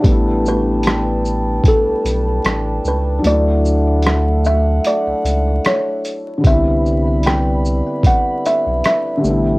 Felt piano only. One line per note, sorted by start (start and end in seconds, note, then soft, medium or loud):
0.00 3.19 G3 medium
0.00 3.17 D4 medium
0.05 3.20 A3 medium
0.05 3.22 B3 medium
0.12 3.24 E4 medium
3.18 6.39 F#3 medium
3.18 6.37 D4 medium
3.25 6.40 A3 medium
3.32 6.44 E4 medium
6.38 9.16 D3 medium
6.38 9.18 G3 medium
6.44 9.20 B3 medium
6.44 9.22 C4 medium
6.51 9.23 E4 medium
9.17 9.59 D3 medium
9.17 9.59 G3 medium
9.24 9.59 A3 medium
9.24 9.59 B3 medium
9.30 9.59 E4 medium